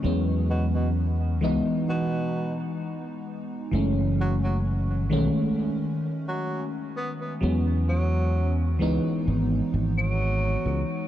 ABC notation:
X:1
M:4/4
L:1/16
Q:1/4=65
K:C#m
V:1 name="FM electric piano" clef=bass
[F,G,B,C]6 [E,G,B,D]8- [E,G,B,D]2 | [E,G,A,C]6 [D,G,A,C]8- [D,G,A,C]2 | [F,G,B,C]6 [E,G,B,D]8- [E,G,B,D]2 |]
V:2 name="Tenor saxophone" clef=bass
z2 B,, B,, z4 B,,3 z4 z | z2 F, F, z6 z F,2 z B, B, | z2 F,3 z6 F,4 z |]
V:3 name="Fretless electric bass" clef=bass
E,,6 C,,2 z8 | F,,,6 B,,,2 z8 | E,,6 C,,2 G,,,2 G,,,4 C,,2 |]